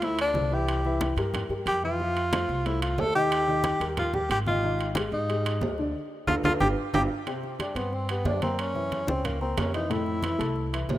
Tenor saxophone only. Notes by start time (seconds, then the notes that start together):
0.05 E4
0.21 D4
0.54 G4
1.68 G4
1.85 F4
2.67 E4
2.83 F4
3.00 A4
3.15 G4
3.99 F4
4.15 G4
4.31 G4
4.48 F4
5.13 D#4
6.28 F4
6.45 F4
6.60 G4
6.95 G4
7.61 D4
7.77 B3
7.93 C4
8.11 B3
8.27 D4
8.43 C4
8.60 C#4
9.09 C4
9.25 A#3
9.41 C4
9.58 C#4
9.75 D#4
9.92 E4